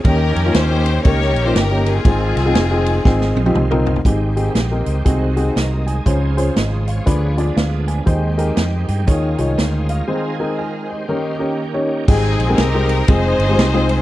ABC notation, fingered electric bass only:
X:1
M:4/4
L:1/8
Q:"Swing" 1/4=120
K:Ab
V:1 name="Fingered electric bass" clef=bass
E,, F,, E,,2 D,, B,,, G,,,2 | A,,, C,, F,,,2 A,,, B,,, C,,2 | A,,,2 B,,, D,, C,,2 C,,2 | D,,2 A,,,2 =D,,2 D,,2 |
E,,2 F,, G,, E,, C,, =D,,2 | z8 | A,,, B,,, C,,2 F,,, G,,, C,,2 |]